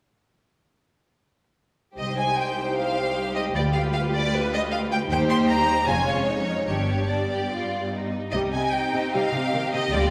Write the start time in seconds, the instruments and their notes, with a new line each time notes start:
1.97 double bass section C2, cello section C2, viola section G3 D#4, violin section G4 C5 D#5
2.18 violin section G#5
2.37 violin section G5
2.76 violin section F5
3.35 violin section D#5
3.54 double bass section D2, cello section D2, viola section F4, violin section B4 D5
3.73 violin section F5
3.93 violin section F5
4.13 violin section D5
4.36 violin section B4
4.53 violin section D#5
4.72 violin section F5
4.91 violin section G5
5.09 double bass section D#2, cello section D#2, viola section G3 D#4, violin section G4 C5 G5
5.29 violin section C6
5.48 violin section A#5
5.87 double bass section F1, cello section F2, viola section G#3 C#4, violin section F4 C#5 G#5
6.08 violin section C#5
6.29 violin section D#4
6.67 double bass section G1, cello section G2, viola section G3 B3, violin section D4 G4 C#5
7.09 viola section G3 B3, violin section D4 D5
7.31 violin section G4
7.52 violin section F4
7.93 violin section D#4
8.31 double bass section C2, cello section C3, viola section G3 C4, violin section D#4 G4 D#5
8.52 cello section C3, viola section C3, violin section G#5
8.71 violin section G5
8.93 viola section C3, cello section C3
9.12 cello section C3, viola section G3, violin section F5
9.32 viola section C3, cello section C3
9.54 cello section C3, viola section D#3
9.73 viola section C3, cello section C3, violin section D#5
9.92 double bass section D2, cello section D3, viola section G3 B3, violin section F4 D5